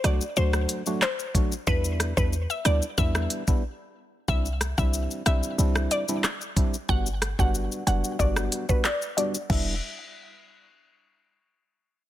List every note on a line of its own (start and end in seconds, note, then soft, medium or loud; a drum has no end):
0.04 0.20 C2 loud
0.04 0.24 F#3 medium
0.04 0.24 A3 medium
0.04 0.24 D4 medium
0.04 0.24 F#4 medium
0.04 0.15 D5 medium
0.04 cross-stick medium
0.04 closed hi-hat medium
0.04 shaker medium
0.21 shaker medium
0.37 0.66 D2 loud
0.37 0.83 F#3 loud
0.37 0.83 A3 medium
0.37 0.83 D4 medium
0.37 0.83 F#4 loud
0.37 0.84 C5 loud
0.37 shaker medium
0.53 cross-stick loud
0.53 shaker medium
0.69 closed hi-hat medium
0.69 shaker medium
0.86 1.04 F#3 medium
0.86 1.04 A3 medium
0.86 1.04 D4 medium
0.86 1.04 F#4 medium
0.86 shaker medium
1.02 1.49 C5 medium
1.02 cross-stick medium
1.02 clap medium
1.02 shaker medium
1.19 shaker medium
1.34 1.54 F#3 medium
1.34 1.54 A3 medium
1.34 1.54 D4 medium
1.34 1.54 F#4 medium
1.34 kick medium
1.34 closed hi-hat medium
1.34 shaker medium
1.52 shaker medium
1.67 2.13 E2 loud
1.67 2.13 G3 medium
1.67 2.13 B3 medium
1.67 2.13 D4 medium
1.67 2.13 E4 loud
1.67 1.78 B4 loud
1.67 kick loud
1.67 shaker medium
1.84 shaker medium
2.00 cross-stick loud
2.00 closed hi-hat medium
2.00 shaker medium
2.17 2.47 E2 loud
2.17 2.35 G3 medium
2.17 2.35 B3 medium
2.17 2.35 D4 medium
2.17 2.35 E4 medium
2.17 2.27 B4 medium
2.17 kick loud
2.17 shaker medium
2.33 shaker medium
2.50 2.60 E5 medium
2.50 shaker medium
2.65 2.81 D2 loud
2.65 2.84 G3 medium
2.65 2.84 B3 medium
2.65 2.84 D4 medium
2.65 2.85 E4 medium
2.65 2.76 D5 medium
2.65 cross-stick medium
2.65 closed hi-hat medium
2.65 shaker medium
2.82 shaker medium
2.98 3.27 E2 loud
2.98 3.44 G3 loud
2.98 3.44 B3 medium
2.98 3.44 D4 medium
2.98 3.44 E4 loud
2.98 3.45 E5 loud
2.98 kick medium
2.98 shaker medium
3.15 cross-stick loud
3.15 shaker medium
3.30 closed hi-hat medium
3.30 shaker medium
3.48 3.63 G3 medium
3.48 3.63 B3 medium
3.48 3.63 D4 medium
3.48 3.63 E4 medium
3.48 kick loud
3.48 shaker medium
4.28 4.74 C2 loud
4.28 4.48 G3 medium
4.28 4.48 C4 medium
4.28 4.48 D4 medium
4.28 4.48 E4 loud
4.28 4.39 E5 loud
4.28 kick loud
4.28 shaker medium
4.46 shaker medium
4.61 cross-stick medium
4.61 closed hi-hat medium
4.61 shaker medium
4.78 5.08 C2 medium
4.78 5.22 G3 medium
4.78 5.23 C4 medium
4.78 5.23 D4 medium
4.78 5.23 E4 medium
4.78 4.99 E5 medium
4.78 kick medium
4.78 shaker medium
4.94 shaker medium
5.11 shaker medium
5.26 5.42 B1 medium
5.26 5.56 G3 medium
5.26 5.56 C4 medium
5.26 5.57 D4 medium
5.26 5.57 E4 medium
5.26 5.47 E5 medium
5.26 cross-stick medium
5.26 closed hi-hat medium
5.26 shaker medium
5.43 shaker medium
5.58 5.88 C2 loud
5.58 6.05 G3 loud
5.58 6.05 C4 medium
5.58 6.05 D4 medium
5.58 6.05 E4 loud
5.58 shaker medium
5.76 cross-stick loud
5.76 shaker medium
5.91 6.02 D5 medium
5.91 closed hi-hat medium
5.91 shaker medium
6.08 6.26 G3 medium
6.08 6.26 C4 medium
6.08 6.26 D4 medium
6.08 6.26 E4 medium
6.08 shaker medium
6.24 cross-stick loud
6.24 clap medium
6.24 shaker medium
6.41 shaker medium
6.56 6.76 G3 medium
6.56 6.76 C4 medium
6.56 6.76 D4 medium
6.56 6.76 E4 medium
6.56 kick medium
6.56 closed hi-hat medium
6.56 shaker medium
6.74 shaker medium
6.89 7.35 G1 loud
6.89 7.08 G3 medium
6.89 7.09 B3 medium
6.89 7.09 D4 medium
6.89 7.09 F#4 loud
6.89 7.00 F#5 loud
6.89 kick loud
6.89 shaker medium
7.06 shaker medium
7.22 cross-stick loud
7.22 closed hi-hat medium
7.22 shaker medium
7.39 7.68 G1 medium
7.39 7.83 G3 medium
7.39 7.83 B3 medium
7.39 7.84 D4 medium
7.39 7.84 F#4 medium
7.39 7.60 F#5 medium
7.39 kick medium
7.39 shaker medium
7.55 shaker medium
7.72 shaker medium
7.87 8.03 F#1 medium
7.87 8.17 G3 medium
7.87 8.17 B3 medium
7.87 8.17 D4 medium
7.87 8.17 F#4 medium
7.87 8.07 F#5 medium
7.87 closed hi-hat medium
7.87 shaker medium
8.04 shaker medium
8.19 8.49 G1 loud
8.19 8.65 G3 loud
8.19 8.66 B3 medium
8.19 8.66 D4 medium
8.19 8.66 F#4 loud
8.19 8.30 D5 medium
8.19 kick loud
8.19 shaker medium
8.36 cross-stick loud
8.36 shaker medium
8.52 closed hi-hat medium
8.52 shaker medium
8.69 8.87 G3 medium
8.69 8.87 B3 medium
8.69 8.87 D4 medium
8.69 8.87 F#4 medium
8.69 8.79 B4 medium
8.69 kick loud
8.69 shaker medium
8.85 8.96 D5 medium
8.85 cross-stick medium
8.85 clap medium
8.85 shaker medium
9.02 shaker medium
9.17 9.37 G3 medium
9.17 9.37 B3 medium
9.17 9.37 D4 medium
9.17 9.37 F#4 medium
9.17 9.28 D5 medium
9.17 closed hi-hat medium
9.17 shaker medium
9.34 shaker medium
9.49 9.80 E1 loud
9.49 9.74 G3 medium
9.49 9.75 B3 medium
9.49 9.75 D4 medium
9.49 9.75 E4 medium
9.49 9.80 E5 medium
9.49 kick loud
9.49 crash medium